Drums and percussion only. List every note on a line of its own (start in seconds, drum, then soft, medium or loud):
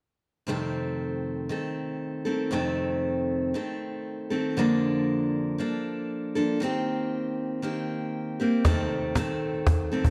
8.65 cajon bass medium
8.65 cajon slap soft
8.90 cajon slap soft
9.15 cajon slap medium
9.29 cajon slap soft
9.54 cajon slap soft
9.67 cajon bass medium
9.67 cajon slap soft
10.04 cajon bass medium